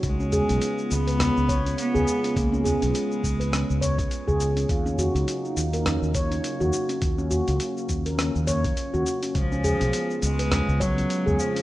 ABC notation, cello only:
X:1
M:4/4
L:1/8
Q:"Swing 16ths" 1/4=103
K:Dbmix
V:1 name="Cello" clef=bass
A,3 C3 C2 | B, A,6 z | z8 | z8 |
F,3 A,2 G,2 F, |]